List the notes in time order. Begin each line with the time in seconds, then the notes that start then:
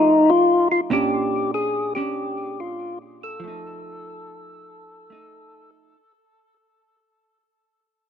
Already playing: F3 A3 D#4 G#4
0.30 F4
0.72 F4
0.90 A#2 C#4 D4 G4
1.54 G#4
1.95 C#4 D4 G4
2.60 F4
3.23 A4
3.40 F3
3.44 A3 D#4
5.10 A3 D#4